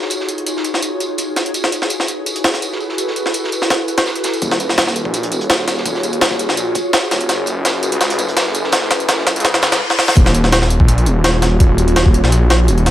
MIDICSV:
0, 0, Header, 1, 5, 480
1, 0, Start_track
1, 0, Tempo, 359281
1, 144, Time_signature, 4, 2, 24, 8
1, 17244, End_track
2, 0, Start_track
2, 0, Title_t, "Ambient pad"
2, 0, Program_c, 0, 92
2, 0, Note_on_c, 0, 63, 77
2, 0, Note_on_c, 0, 65, 70
2, 0, Note_on_c, 0, 66, 66
2, 0, Note_on_c, 0, 68, 69
2, 0, Note_on_c, 0, 73, 85
2, 2013, Note_off_c, 0, 66, 0
2, 2022, Note_off_c, 0, 65, 0
2, 2023, Note_off_c, 0, 63, 0
2, 2024, Note_off_c, 0, 73, 0
2, 2055, Note_on_c, 0, 69, 70
2, 2056, Note_on_c, 0, 66, 71
2, 2056, Note_on_c, 0, 71, 86
2, 2057, Note_on_c, 0, 64, 77
2, 5847, Note_off_c, 0, 68, 0
2, 5861, Note_off_c, 0, 69, 0
2, 5862, Note_off_c, 0, 64, 0
2, 5862, Note_off_c, 0, 66, 0
2, 5862, Note_off_c, 0, 71, 0
2, 5900, Note_on_c, 0, 73, 89
2, 5901, Note_on_c, 0, 65, 77
2, 5904, Note_on_c, 0, 66, 70
2, 5905, Note_on_c, 0, 68, 72
2, 9704, Note_off_c, 0, 65, 0
2, 9704, Note_off_c, 0, 73, 0
2, 9705, Note_off_c, 0, 66, 0
2, 9740, Note_on_c, 0, 64, 84
2, 9742, Note_on_c, 0, 69, 72
2, 9742, Note_on_c, 0, 71, 89
2, 13051, Note_off_c, 0, 68, 0
2, 13068, Note_off_c, 0, 64, 0
2, 13069, Note_off_c, 0, 69, 0
2, 13069, Note_off_c, 0, 71, 0
2, 13585, Note_on_c, 0, 68, 75
2, 13586, Note_on_c, 0, 66, 74
2, 13586, Note_on_c, 0, 73, 88
2, 13588, Note_on_c, 0, 65, 81
2, 17244, Note_off_c, 0, 65, 0
2, 17244, Note_off_c, 0, 66, 0
2, 17244, Note_off_c, 0, 68, 0
2, 17244, Note_off_c, 0, 73, 0
2, 17244, End_track
3, 0, Start_track
3, 0, Title_t, "Detuned saw bass"
3, 0, Program_c, 1, 39
3, 5905, Note_on_c, 1, 27, 100
3, 6731, Note_off_c, 1, 27, 0
3, 6751, Note_on_c, 1, 34, 93
3, 7101, Note_on_c, 1, 27, 93
3, 7121, Note_off_c, 1, 34, 0
3, 7805, Note_off_c, 1, 27, 0
3, 7823, Note_on_c, 1, 27, 99
3, 8650, Note_off_c, 1, 27, 0
3, 8669, Note_on_c, 1, 34, 92
3, 9005, Note_off_c, 1, 34, 0
3, 9503, Note_on_c, 1, 27, 91
3, 9721, Note_off_c, 1, 27, 0
3, 9739, Note_on_c, 1, 30, 99
3, 10568, Note_off_c, 1, 30, 0
3, 10587, Note_on_c, 1, 37, 97
3, 10941, Note_on_c, 1, 30, 91
3, 10961, Note_off_c, 1, 37, 0
3, 11644, Note_off_c, 1, 30, 0
3, 11657, Note_on_c, 1, 30, 100
3, 12487, Note_off_c, 1, 30, 0
3, 12508, Note_on_c, 1, 37, 93
3, 13102, Note_off_c, 1, 37, 0
3, 13581, Note_on_c, 1, 27, 94
3, 14409, Note_off_c, 1, 27, 0
3, 14427, Note_on_c, 1, 34, 95
3, 14780, Note_on_c, 1, 27, 96
3, 14800, Note_off_c, 1, 34, 0
3, 15484, Note_off_c, 1, 27, 0
3, 15501, Note_on_c, 1, 27, 106
3, 16329, Note_off_c, 1, 27, 0
3, 16348, Note_on_c, 1, 34, 96
3, 16942, Note_on_c, 1, 27, 85
3, 16962, Note_off_c, 1, 34, 0
3, 17244, Note_off_c, 1, 27, 0
3, 17244, End_track
4, 0, Start_track
4, 0, Title_t, "Reverse cymbal"
4, 0, Program_c, 2, 119
4, 12622, Note_on_c, 2, 60, 73
4, 13583, Note_off_c, 2, 60, 0
4, 17244, End_track
5, 0, Start_track
5, 0, Title_t, "Drums"
5, 24, Note_on_c, 9, 38, 36
5, 133, Note_on_c, 9, 54, 83
5, 144, Note_on_c, 9, 42, 78
5, 157, Note_off_c, 9, 38, 0
5, 267, Note_off_c, 9, 54, 0
5, 270, Note_on_c, 9, 38, 34
5, 278, Note_off_c, 9, 42, 0
5, 380, Note_on_c, 9, 54, 59
5, 381, Note_on_c, 9, 42, 63
5, 404, Note_off_c, 9, 38, 0
5, 508, Note_off_c, 9, 42, 0
5, 508, Note_on_c, 9, 42, 40
5, 514, Note_off_c, 9, 54, 0
5, 621, Note_off_c, 9, 42, 0
5, 621, Note_on_c, 9, 42, 86
5, 633, Note_on_c, 9, 54, 81
5, 755, Note_off_c, 9, 42, 0
5, 756, Note_on_c, 9, 38, 43
5, 767, Note_off_c, 9, 54, 0
5, 862, Note_on_c, 9, 42, 63
5, 865, Note_on_c, 9, 54, 59
5, 890, Note_off_c, 9, 38, 0
5, 989, Note_on_c, 9, 38, 37
5, 995, Note_off_c, 9, 42, 0
5, 999, Note_off_c, 9, 54, 0
5, 1101, Note_on_c, 9, 54, 69
5, 1102, Note_on_c, 9, 42, 82
5, 1123, Note_off_c, 9, 38, 0
5, 1235, Note_off_c, 9, 54, 0
5, 1236, Note_off_c, 9, 42, 0
5, 1342, Note_on_c, 9, 42, 62
5, 1350, Note_on_c, 9, 54, 68
5, 1475, Note_off_c, 9, 42, 0
5, 1483, Note_off_c, 9, 54, 0
5, 1575, Note_on_c, 9, 54, 79
5, 1582, Note_on_c, 9, 42, 84
5, 1709, Note_off_c, 9, 54, 0
5, 1715, Note_off_c, 9, 42, 0
5, 1822, Note_on_c, 9, 38, 39
5, 1822, Note_on_c, 9, 42, 63
5, 1827, Note_on_c, 9, 54, 62
5, 1949, Note_off_c, 9, 42, 0
5, 1949, Note_on_c, 9, 42, 39
5, 1956, Note_off_c, 9, 38, 0
5, 1961, Note_off_c, 9, 54, 0
5, 2061, Note_off_c, 9, 42, 0
5, 2061, Note_on_c, 9, 42, 78
5, 2061, Note_on_c, 9, 54, 74
5, 2188, Note_on_c, 9, 38, 52
5, 2195, Note_off_c, 9, 42, 0
5, 2195, Note_off_c, 9, 54, 0
5, 2301, Note_on_c, 9, 54, 59
5, 2302, Note_on_c, 9, 42, 67
5, 2322, Note_off_c, 9, 38, 0
5, 2430, Note_on_c, 9, 38, 39
5, 2435, Note_off_c, 9, 54, 0
5, 2436, Note_off_c, 9, 42, 0
5, 2536, Note_on_c, 9, 54, 77
5, 2542, Note_on_c, 9, 42, 84
5, 2563, Note_off_c, 9, 38, 0
5, 2669, Note_off_c, 9, 54, 0
5, 2669, Note_on_c, 9, 38, 36
5, 2675, Note_off_c, 9, 42, 0
5, 2769, Note_on_c, 9, 54, 63
5, 2783, Note_on_c, 9, 42, 63
5, 2802, Note_off_c, 9, 38, 0
5, 2902, Note_off_c, 9, 54, 0
5, 2916, Note_off_c, 9, 42, 0
5, 3024, Note_on_c, 9, 42, 81
5, 3028, Note_on_c, 9, 54, 79
5, 3149, Note_off_c, 9, 42, 0
5, 3149, Note_on_c, 9, 42, 40
5, 3151, Note_off_c, 9, 42, 0
5, 3151, Note_on_c, 9, 42, 41
5, 3161, Note_off_c, 9, 54, 0
5, 3261, Note_on_c, 9, 54, 65
5, 3264, Note_off_c, 9, 42, 0
5, 3264, Note_on_c, 9, 38, 102
5, 3264, Note_on_c, 9, 42, 73
5, 3385, Note_off_c, 9, 42, 0
5, 3385, Note_on_c, 9, 42, 42
5, 3392, Note_off_c, 9, 38, 0
5, 3392, Note_on_c, 9, 38, 33
5, 3394, Note_off_c, 9, 54, 0
5, 3504, Note_off_c, 9, 42, 0
5, 3504, Note_on_c, 9, 42, 57
5, 3506, Note_on_c, 9, 54, 87
5, 3525, Note_off_c, 9, 38, 0
5, 3635, Note_on_c, 9, 38, 34
5, 3637, Note_off_c, 9, 42, 0
5, 3640, Note_off_c, 9, 54, 0
5, 3746, Note_on_c, 9, 54, 55
5, 3769, Note_off_c, 9, 38, 0
5, 3862, Note_on_c, 9, 38, 34
5, 3879, Note_off_c, 9, 54, 0
5, 3984, Note_on_c, 9, 42, 78
5, 3986, Note_on_c, 9, 54, 80
5, 3995, Note_off_c, 9, 38, 0
5, 4109, Note_on_c, 9, 38, 36
5, 4117, Note_off_c, 9, 42, 0
5, 4120, Note_off_c, 9, 54, 0
5, 4224, Note_on_c, 9, 42, 58
5, 4225, Note_on_c, 9, 54, 59
5, 4243, Note_off_c, 9, 38, 0
5, 4352, Note_on_c, 9, 38, 35
5, 4357, Note_off_c, 9, 42, 0
5, 4358, Note_off_c, 9, 54, 0
5, 4456, Note_on_c, 9, 54, 76
5, 4465, Note_on_c, 9, 42, 82
5, 4486, Note_off_c, 9, 38, 0
5, 4590, Note_off_c, 9, 54, 0
5, 4596, Note_on_c, 9, 38, 44
5, 4598, Note_off_c, 9, 42, 0
5, 4706, Note_on_c, 9, 42, 61
5, 4714, Note_on_c, 9, 54, 63
5, 4730, Note_off_c, 9, 38, 0
5, 4833, Note_on_c, 9, 38, 38
5, 4840, Note_off_c, 9, 42, 0
5, 4848, Note_off_c, 9, 54, 0
5, 4947, Note_off_c, 9, 38, 0
5, 4947, Note_on_c, 9, 38, 93
5, 4947, Note_on_c, 9, 42, 72
5, 4948, Note_on_c, 9, 54, 73
5, 5081, Note_off_c, 9, 38, 0
5, 5081, Note_off_c, 9, 42, 0
5, 5081, Note_off_c, 9, 54, 0
5, 5180, Note_on_c, 9, 54, 61
5, 5187, Note_on_c, 9, 42, 57
5, 5312, Note_off_c, 9, 42, 0
5, 5312, Note_on_c, 9, 38, 95
5, 5312, Note_on_c, 9, 42, 75
5, 5314, Note_off_c, 9, 54, 0
5, 5421, Note_on_c, 9, 54, 73
5, 5425, Note_off_c, 9, 38, 0
5, 5425, Note_on_c, 9, 38, 83
5, 5446, Note_off_c, 9, 42, 0
5, 5552, Note_on_c, 9, 42, 58
5, 5555, Note_off_c, 9, 54, 0
5, 5559, Note_off_c, 9, 38, 0
5, 5659, Note_on_c, 9, 54, 79
5, 5664, Note_off_c, 9, 42, 0
5, 5664, Note_on_c, 9, 42, 76
5, 5670, Note_on_c, 9, 38, 98
5, 5790, Note_off_c, 9, 54, 0
5, 5790, Note_on_c, 9, 54, 72
5, 5792, Note_off_c, 9, 42, 0
5, 5792, Note_on_c, 9, 42, 38
5, 5804, Note_off_c, 9, 38, 0
5, 5903, Note_off_c, 9, 42, 0
5, 5903, Note_on_c, 9, 42, 81
5, 5904, Note_on_c, 9, 36, 105
5, 5911, Note_off_c, 9, 54, 0
5, 5911, Note_on_c, 9, 54, 80
5, 6032, Note_on_c, 9, 38, 54
5, 6036, Note_off_c, 9, 42, 0
5, 6037, Note_off_c, 9, 36, 0
5, 6044, Note_off_c, 9, 54, 0
5, 6145, Note_on_c, 9, 42, 64
5, 6147, Note_on_c, 9, 54, 59
5, 6165, Note_off_c, 9, 38, 0
5, 6271, Note_on_c, 9, 38, 40
5, 6279, Note_off_c, 9, 42, 0
5, 6281, Note_off_c, 9, 54, 0
5, 6381, Note_off_c, 9, 38, 0
5, 6381, Note_on_c, 9, 38, 126
5, 6384, Note_off_c, 9, 38, 0
5, 6384, Note_on_c, 9, 38, 107
5, 6384, Note_on_c, 9, 42, 81
5, 6400, Note_on_c, 9, 54, 87
5, 6510, Note_off_c, 9, 38, 0
5, 6510, Note_on_c, 9, 38, 37
5, 6517, Note_off_c, 9, 42, 0
5, 6533, Note_off_c, 9, 54, 0
5, 6624, Note_on_c, 9, 42, 61
5, 6627, Note_on_c, 9, 54, 68
5, 6644, Note_off_c, 9, 38, 0
5, 6751, Note_on_c, 9, 36, 87
5, 6758, Note_off_c, 9, 42, 0
5, 6760, Note_off_c, 9, 54, 0
5, 6864, Note_on_c, 9, 42, 84
5, 6864, Note_on_c, 9, 54, 81
5, 6884, Note_off_c, 9, 36, 0
5, 6991, Note_off_c, 9, 42, 0
5, 6991, Note_on_c, 9, 42, 42
5, 6996, Note_off_c, 9, 42, 0
5, 6996, Note_on_c, 9, 42, 46
5, 6998, Note_off_c, 9, 54, 0
5, 7103, Note_off_c, 9, 42, 0
5, 7103, Note_on_c, 9, 42, 67
5, 7115, Note_on_c, 9, 54, 61
5, 7228, Note_off_c, 9, 42, 0
5, 7228, Note_on_c, 9, 42, 45
5, 7249, Note_off_c, 9, 54, 0
5, 7343, Note_off_c, 9, 42, 0
5, 7343, Note_on_c, 9, 38, 115
5, 7343, Note_on_c, 9, 42, 86
5, 7351, Note_on_c, 9, 54, 80
5, 7355, Note_off_c, 9, 38, 0
5, 7355, Note_on_c, 9, 38, 99
5, 7475, Note_off_c, 9, 38, 0
5, 7475, Note_on_c, 9, 38, 35
5, 7476, Note_off_c, 9, 42, 0
5, 7484, Note_off_c, 9, 54, 0
5, 7583, Note_off_c, 9, 38, 0
5, 7583, Note_on_c, 9, 38, 44
5, 7583, Note_on_c, 9, 42, 67
5, 7588, Note_on_c, 9, 54, 68
5, 7716, Note_off_c, 9, 38, 0
5, 7716, Note_off_c, 9, 42, 0
5, 7717, Note_on_c, 9, 38, 39
5, 7721, Note_off_c, 9, 54, 0
5, 7823, Note_on_c, 9, 36, 102
5, 7823, Note_on_c, 9, 42, 86
5, 7828, Note_on_c, 9, 54, 86
5, 7850, Note_off_c, 9, 38, 0
5, 7948, Note_on_c, 9, 38, 35
5, 7956, Note_off_c, 9, 42, 0
5, 7957, Note_off_c, 9, 36, 0
5, 7962, Note_off_c, 9, 54, 0
5, 8062, Note_on_c, 9, 42, 67
5, 8063, Note_on_c, 9, 54, 65
5, 8082, Note_off_c, 9, 38, 0
5, 8190, Note_off_c, 9, 42, 0
5, 8190, Note_on_c, 9, 42, 42
5, 8197, Note_off_c, 9, 54, 0
5, 8301, Note_off_c, 9, 42, 0
5, 8301, Note_on_c, 9, 38, 115
5, 8301, Note_on_c, 9, 42, 87
5, 8304, Note_off_c, 9, 38, 0
5, 8304, Note_on_c, 9, 38, 115
5, 8309, Note_on_c, 9, 54, 88
5, 8429, Note_on_c, 9, 36, 91
5, 8431, Note_off_c, 9, 38, 0
5, 8431, Note_on_c, 9, 38, 47
5, 8435, Note_off_c, 9, 42, 0
5, 8443, Note_off_c, 9, 54, 0
5, 8543, Note_on_c, 9, 42, 63
5, 8551, Note_on_c, 9, 54, 63
5, 8563, Note_off_c, 9, 36, 0
5, 8564, Note_off_c, 9, 38, 0
5, 8669, Note_on_c, 9, 38, 42
5, 8676, Note_off_c, 9, 42, 0
5, 8685, Note_off_c, 9, 54, 0
5, 8781, Note_on_c, 9, 42, 84
5, 8781, Note_on_c, 9, 54, 82
5, 8803, Note_off_c, 9, 38, 0
5, 8915, Note_off_c, 9, 42, 0
5, 8915, Note_off_c, 9, 54, 0
5, 9015, Note_on_c, 9, 54, 75
5, 9022, Note_on_c, 9, 36, 92
5, 9022, Note_on_c, 9, 42, 68
5, 9149, Note_off_c, 9, 54, 0
5, 9155, Note_off_c, 9, 36, 0
5, 9156, Note_off_c, 9, 42, 0
5, 9261, Note_on_c, 9, 38, 112
5, 9261, Note_on_c, 9, 42, 85
5, 9265, Note_on_c, 9, 54, 87
5, 9266, Note_off_c, 9, 38, 0
5, 9266, Note_on_c, 9, 38, 107
5, 9394, Note_off_c, 9, 42, 0
5, 9398, Note_off_c, 9, 54, 0
5, 9400, Note_off_c, 9, 38, 0
5, 9501, Note_on_c, 9, 54, 72
5, 9502, Note_on_c, 9, 38, 41
5, 9502, Note_on_c, 9, 42, 66
5, 9627, Note_off_c, 9, 42, 0
5, 9627, Note_on_c, 9, 42, 43
5, 9635, Note_off_c, 9, 38, 0
5, 9635, Note_off_c, 9, 54, 0
5, 9739, Note_off_c, 9, 42, 0
5, 9739, Note_on_c, 9, 38, 49
5, 9739, Note_on_c, 9, 42, 87
5, 9743, Note_on_c, 9, 54, 79
5, 9873, Note_off_c, 9, 38, 0
5, 9873, Note_off_c, 9, 42, 0
5, 9876, Note_off_c, 9, 54, 0
5, 9967, Note_on_c, 9, 54, 71
5, 9981, Note_on_c, 9, 42, 68
5, 10101, Note_off_c, 9, 54, 0
5, 10114, Note_off_c, 9, 42, 0
5, 10220, Note_on_c, 9, 38, 121
5, 10220, Note_on_c, 9, 42, 88
5, 10227, Note_on_c, 9, 54, 80
5, 10353, Note_off_c, 9, 42, 0
5, 10354, Note_off_c, 9, 38, 0
5, 10360, Note_off_c, 9, 54, 0
5, 10458, Note_on_c, 9, 42, 74
5, 10467, Note_on_c, 9, 54, 71
5, 10583, Note_off_c, 9, 42, 0
5, 10583, Note_on_c, 9, 42, 73
5, 10601, Note_off_c, 9, 54, 0
5, 10697, Note_off_c, 9, 42, 0
5, 10697, Note_on_c, 9, 38, 58
5, 10697, Note_on_c, 9, 42, 82
5, 10705, Note_on_c, 9, 54, 84
5, 10825, Note_off_c, 9, 42, 0
5, 10825, Note_on_c, 9, 42, 43
5, 10831, Note_off_c, 9, 38, 0
5, 10838, Note_off_c, 9, 54, 0
5, 10937, Note_on_c, 9, 54, 77
5, 10938, Note_off_c, 9, 42, 0
5, 10938, Note_on_c, 9, 42, 68
5, 11066, Note_off_c, 9, 42, 0
5, 11066, Note_on_c, 9, 42, 43
5, 11070, Note_off_c, 9, 54, 0
5, 11178, Note_off_c, 9, 42, 0
5, 11178, Note_on_c, 9, 38, 63
5, 11178, Note_on_c, 9, 42, 86
5, 11183, Note_off_c, 9, 38, 0
5, 11183, Note_on_c, 9, 38, 118
5, 11187, Note_on_c, 9, 54, 88
5, 11311, Note_off_c, 9, 42, 0
5, 11312, Note_off_c, 9, 38, 0
5, 11312, Note_on_c, 9, 38, 42
5, 11321, Note_off_c, 9, 54, 0
5, 11418, Note_on_c, 9, 42, 67
5, 11420, Note_on_c, 9, 54, 74
5, 11445, Note_off_c, 9, 38, 0
5, 11543, Note_on_c, 9, 38, 39
5, 11551, Note_off_c, 9, 42, 0
5, 11554, Note_off_c, 9, 54, 0
5, 11651, Note_on_c, 9, 54, 98
5, 11657, Note_off_c, 9, 38, 0
5, 11657, Note_on_c, 9, 38, 76
5, 11657, Note_on_c, 9, 42, 93
5, 11783, Note_off_c, 9, 38, 0
5, 11783, Note_on_c, 9, 38, 34
5, 11785, Note_off_c, 9, 54, 0
5, 11791, Note_off_c, 9, 42, 0
5, 11896, Note_on_c, 9, 54, 72
5, 11898, Note_off_c, 9, 38, 0
5, 11898, Note_on_c, 9, 38, 81
5, 11898, Note_on_c, 9, 42, 69
5, 12025, Note_off_c, 9, 42, 0
5, 12025, Note_on_c, 9, 42, 46
5, 12029, Note_off_c, 9, 54, 0
5, 12032, Note_off_c, 9, 38, 0
5, 12137, Note_on_c, 9, 38, 127
5, 12138, Note_on_c, 9, 54, 84
5, 12139, Note_off_c, 9, 38, 0
5, 12139, Note_off_c, 9, 42, 0
5, 12139, Note_on_c, 9, 38, 84
5, 12139, Note_on_c, 9, 42, 95
5, 12267, Note_off_c, 9, 38, 0
5, 12267, Note_on_c, 9, 38, 46
5, 12271, Note_off_c, 9, 54, 0
5, 12272, Note_off_c, 9, 42, 0
5, 12380, Note_off_c, 9, 38, 0
5, 12380, Note_on_c, 9, 38, 84
5, 12380, Note_on_c, 9, 42, 81
5, 12385, Note_on_c, 9, 54, 74
5, 12506, Note_off_c, 9, 42, 0
5, 12506, Note_on_c, 9, 42, 67
5, 12513, Note_off_c, 9, 38, 0
5, 12519, Note_off_c, 9, 54, 0
5, 12562, Note_off_c, 9, 42, 0
5, 12562, Note_on_c, 9, 42, 66
5, 12620, Note_off_c, 9, 42, 0
5, 12620, Note_on_c, 9, 38, 92
5, 12620, Note_on_c, 9, 42, 77
5, 12625, Note_on_c, 9, 54, 90
5, 12747, Note_off_c, 9, 38, 0
5, 12747, Note_on_c, 9, 38, 84
5, 12754, Note_off_c, 9, 42, 0
5, 12759, Note_off_c, 9, 54, 0
5, 12852, Note_on_c, 9, 54, 78
5, 12862, Note_off_c, 9, 38, 0
5, 12862, Note_on_c, 9, 38, 95
5, 12862, Note_on_c, 9, 42, 61
5, 12864, Note_off_c, 9, 38, 0
5, 12864, Note_on_c, 9, 38, 110
5, 12984, Note_off_c, 9, 38, 0
5, 12984, Note_on_c, 9, 38, 114
5, 12985, Note_off_c, 9, 54, 0
5, 12985, Note_on_c, 9, 54, 83
5, 12989, Note_off_c, 9, 38, 0
5, 12989, Note_off_c, 9, 42, 0
5, 12989, Note_on_c, 9, 38, 84
5, 12989, Note_on_c, 9, 42, 81
5, 13119, Note_off_c, 9, 54, 0
5, 13122, Note_off_c, 9, 38, 0
5, 13122, Note_off_c, 9, 42, 0
5, 13228, Note_on_c, 9, 38, 55
5, 13342, Note_off_c, 9, 38, 0
5, 13342, Note_on_c, 9, 38, 80
5, 13469, Note_off_c, 9, 38, 0
5, 13469, Note_on_c, 9, 38, 79
5, 13581, Note_on_c, 9, 36, 110
5, 13581, Note_on_c, 9, 42, 86
5, 13602, Note_off_c, 9, 38, 0
5, 13709, Note_on_c, 9, 38, 61
5, 13715, Note_off_c, 9, 36, 0
5, 13715, Note_off_c, 9, 42, 0
5, 13822, Note_on_c, 9, 42, 71
5, 13843, Note_off_c, 9, 38, 0
5, 13948, Note_on_c, 9, 38, 43
5, 13955, Note_off_c, 9, 42, 0
5, 14060, Note_off_c, 9, 38, 0
5, 14060, Note_on_c, 9, 38, 122
5, 14060, Note_on_c, 9, 42, 86
5, 14187, Note_off_c, 9, 38, 0
5, 14187, Note_on_c, 9, 38, 41
5, 14194, Note_off_c, 9, 42, 0
5, 14300, Note_on_c, 9, 42, 68
5, 14320, Note_off_c, 9, 38, 0
5, 14428, Note_on_c, 9, 36, 96
5, 14434, Note_off_c, 9, 42, 0
5, 14541, Note_on_c, 9, 42, 89
5, 14562, Note_off_c, 9, 36, 0
5, 14668, Note_off_c, 9, 42, 0
5, 14668, Note_on_c, 9, 42, 44
5, 14780, Note_off_c, 9, 42, 0
5, 14780, Note_on_c, 9, 42, 69
5, 14914, Note_off_c, 9, 42, 0
5, 15019, Note_on_c, 9, 38, 117
5, 15019, Note_on_c, 9, 42, 91
5, 15153, Note_off_c, 9, 38, 0
5, 15153, Note_off_c, 9, 42, 0
5, 15260, Note_on_c, 9, 38, 48
5, 15260, Note_on_c, 9, 42, 73
5, 15393, Note_off_c, 9, 38, 0
5, 15393, Note_off_c, 9, 42, 0
5, 15499, Note_on_c, 9, 42, 89
5, 15500, Note_on_c, 9, 36, 110
5, 15633, Note_off_c, 9, 36, 0
5, 15633, Note_off_c, 9, 42, 0
5, 15740, Note_on_c, 9, 42, 71
5, 15869, Note_off_c, 9, 42, 0
5, 15869, Note_on_c, 9, 42, 46
5, 15981, Note_off_c, 9, 42, 0
5, 15981, Note_on_c, 9, 38, 123
5, 15981, Note_on_c, 9, 42, 93
5, 16108, Note_on_c, 9, 36, 95
5, 16114, Note_off_c, 9, 38, 0
5, 16114, Note_off_c, 9, 42, 0
5, 16223, Note_on_c, 9, 42, 72
5, 16242, Note_off_c, 9, 36, 0
5, 16349, Note_on_c, 9, 38, 42
5, 16356, Note_off_c, 9, 42, 0
5, 16462, Note_on_c, 9, 42, 88
5, 16483, Note_off_c, 9, 38, 0
5, 16596, Note_off_c, 9, 42, 0
5, 16703, Note_on_c, 9, 38, 108
5, 16703, Note_on_c, 9, 42, 78
5, 16836, Note_off_c, 9, 38, 0
5, 16836, Note_off_c, 9, 42, 0
5, 16942, Note_on_c, 9, 42, 80
5, 17070, Note_off_c, 9, 42, 0
5, 17070, Note_on_c, 9, 42, 40
5, 17183, Note_off_c, 9, 42, 0
5, 17183, Note_on_c, 9, 38, 43
5, 17183, Note_on_c, 9, 42, 68
5, 17244, Note_off_c, 9, 38, 0
5, 17244, Note_off_c, 9, 42, 0
5, 17244, End_track
0, 0, End_of_file